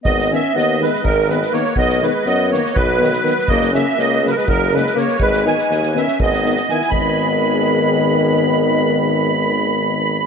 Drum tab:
SD |-oo-o-oo--oooo|-oo-o-oo--oooo|-oo-o-oo--oooo|-ooooooo-ooooo|
BD |o-------o-----|o-------o-----|o-------o-----|o-------o-----|

SD |--------------|--------------|
BD |o-------------|--------------|